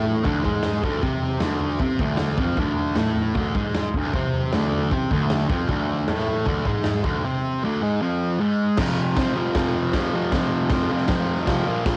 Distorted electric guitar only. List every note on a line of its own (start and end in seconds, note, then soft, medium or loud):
0.00 0.24 A2 medium
0.00 0.25 A3 loud
0.25 0.44 D2 loud
0.25 0.44 D3 loud
0.44 0.83 G#2 loud
0.44 0.83 G#3 loud
0.84 1.02 D2 loud
0.84 1.03 D3 medium
1.03 1.41 C3 medium
1.03 1.42 C4 medium
1.42 1.80 D2 medium
1.42 1.80 D3 medium
1.80 1.99 C3 loud
1.80 2.00 C4 loud
2.00 2.38 D2 medium
2.00 2.39 D3 loud
2.39 2.58 F2 medium
2.39 2.58 F3 medium
2.58 2.97 D2 medium
2.58 2.97 D3 medium
2.97 3.35 A2 medium
2.97 3.36 A3 medium
3.36 3.55 D2 loud
3.36 3.55 D3 loud
3.56 3.94 G#2 medium
3.56 3.94 G#3 loud
3.95 4.13 D2 medium
3.95 4.14 D3 medium
4.13 4.52 C3 medium
4.13 4.52 C4 medium
4.52 4.91 D2 medium
4.52 4.91 D3 loud
4.91 5.10 C3 loud
4.91 5.11 C4 loud
5.11 5.49 D2 medium
5.11 5.50 D3 loud
5.50 5.68 F2 medium
5.50 5.69 F3 loud
5.69 6.08 D2 medium
5.69 6.09 D3 loud
6.08 6.46 A2 medium
6.08 6.46 A3 medium
6.47 6.65 D2 medium
6.47 6.66 D3 loud
6.67 7.04 G#2 loud
6.67 7.04 G#3 loud
7.04 7.23 D2 medium
7.04 7.24 D3 medium
7.24 7.62 C3 medium
7.24 7.62 C4 loud
7.63 7.81 D2 medium
7.63 7.82 D3 loud
7.82 8.00 G#2 medium
7.82 8.01 G#3 loud
8.02 8.39 F2 medium
8.02 8.40 F3 loud
8.40 8.78 G#2 medium
8.40 8.78 G#3 medium
8.78 9.17 F2 medium
8.78 9.17 C3 loud
8.78 9.19 F3 loud
9.17 9.34 F2 medium
9.17 9.35 C3 medium
9.17 9.36 F3 medium
9.35 9.54 F2 medium
9.35 9.55 C3 medium
9.35 9.56 F3 loud
9.55 9.93 F2 loud
9.55 9.94 C3 loud
9.55 9.95 F3 loud
9.94 10.12 F2 medium
9.94 10.13 C3 medium
9.94 10.15 F3 medium
10.14 10.30 F2 medium
10.14 10.31 C3 medium
10.14 10.33 F3 medium
10.31 10.69 F2 loud
10.31 10.71 C3 medium
10.31 10.72 F3 loud
10.70 10.88 F2 medium
10.70 10.89 C3 medium
10.70 10.91 F3 medium
10.90 11.07 F2 medium
10.90 11.08 C3 medium
10.90 11.09 F3 loud
11.08 11.46 F2 loud
11.08 11.47 C3 loud
11.08 11.47 F3 loud
11.47 11.65 F2 medium
11.47 11.66 C3 medium
11.47 11.66 F3 medium
11.67 11.84 A#2 medium
11.67 11.85 F3 medium
11.67 11.86 A#3 loud
11.85 11.97 A#2 loud
11.85 11.97 F3 loud
11.85 11.97 A#3 loud